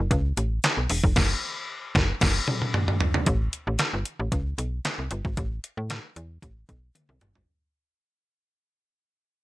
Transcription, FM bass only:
0.11 0.33 C#2 loud
0.37 0.59 A1 medium
0.77 0.88 B1 medium
0.90 1.02 E1 loud
1.04 1.14 F1 loud
1.16 1.34 F#1 loud
1.95 2.13 F#1 loud
2.21 2.40 F#1 loud
3.27 3.49 A1 loud
3.67 3.77 A1 loud
3.93 4.04 G1 loud
4.19 4.30 A1 loud
4.32 4.54 C#2 medium
4.58 4.80 B1 medium
4.99 5.09 C2 medium
5.11 5.23 G1 loud
5.25 5.35 G#1 medium
5.37 5.59 A1 loud
5.77 5.99 A2 medium
6.16 6.38 E2 medium
6.42 6.65 A1 medium
6.69 6.91 B1 medium
7.09 7.19 C2 loud
7.21 7.33 G1 medium
7.35 7.46 G#1 loud

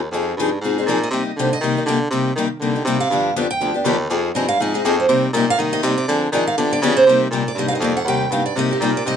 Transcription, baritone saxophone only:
0.00 0.11 D#2 medium
0.11 0.37 F2 medium
0.37 0.60 G2 medium
0.61 0.86 G#2 medium
0.86 1.10 A#2 loud
1.11 1.24 C3 medium
1.25 1.31 C3 soft
1.36 1.60 D3 medium
1.61 1.86 D#3 medium
1.86 2.10 D3 loud
2.11 2.35 C3 medium
2.36 2.48 D#3 medium
2.49 2.55 D#3 soft
2.59 2.84 D3 medium
2.85 3.09 C3 medium
3.10 3.34 G2 medium
3.35 3.48 F2 medium
3.49 3.55 F2 soft
3.60 3.73 D2 medium
3.74 3.80 D2 soft
3.84 4.09 D#2 loud
4.09 4.34 F2 medium
4.34 4.59 G2 medium
4.60 4.84 G#2 medium
4.84 5.08 F2 loud
5.08 5.33 C3 medium
5.33 5.57 A#2 medium
5.58 5.82 D#3 medium
5.83 6.07 C3 loud
6.08 6.31 D3 medium
6.32 6.56 D#3 medium
6.57 6.81 D3 medium
6.82 7.05 C#3 loud
7.06 7.30 C3 medium
7.30 7.54 A#2 medium
7.55 7.79 G2 medium
7.79 8.04 F2 medium
8.04 8.29 D#2 medium
8.30 8.55 G2 medium
8.55 8.79 C3 medium
8.80 9.05 A#2 loud
9.05 9.16 C3 medium

